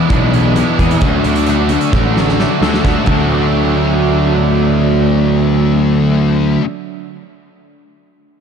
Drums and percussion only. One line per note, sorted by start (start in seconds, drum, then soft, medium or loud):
0.10 kick medium
0.10 closed hi-hat medium
0.34 closed hi-hat medium
0.56 closed hi-hat medium
0.79 kick medium
0.79 closed hi-hat medium
0.91 closed hi-hat medium
1.01 kick medium
1.01 closed hi-hat medium
1.24 closed hi-hat medium
1.36 closed hi-hat medium
1.46 closed hi-hat medium
1.69 closed hi-hat medium
1.81 closed hi-hat medium
1.93 kick loud
1.93 snare medium
2.17 snare medium
2.29 snare medium
2.40 snare medium
2.63 snare medium
2.74 snare medium
2.85 kick medium
2.85 snare medium
3.06 kick medium
3.06 crash medium